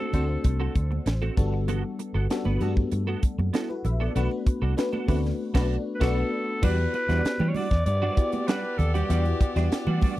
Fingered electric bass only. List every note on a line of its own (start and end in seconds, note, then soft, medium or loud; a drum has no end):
0.14 0.36 D2 medium
0.45 0.67 C2 medium
0.75 0.98 D2 medium
1.06 1.29 A1 medium
1.37 1.82 G1 loud
2.15 2.26 G1 loud
2.46 2.57 G1 medium
2.61 2.83 G2 medium
2.92 3.14 G2 medium
3.38 3.50 F#2 medium
3.85 4.07 A#1 medium
4.16 4.27 B1 loud
4.62 4.73 C2 loud
5.08 5.31 D2 medium
5.55 5.76 B1 loud
6.01 6.22 B1 loud
6.63 6.85 E2 loud
7.09 7.20 E2 loud
7.25 muted fingered electric bass stroke soft
7.40 7.51 E3 medium
7.71 7.82 E2 medium
7.86 8.08 G2 medium
8.79 9.01 D#2 medium
9.10 9.32 E2 loud
9.56 9.67 E2 loud
9.72 muted fingered electric bass stroke soft
9.87 9.98 E3 medium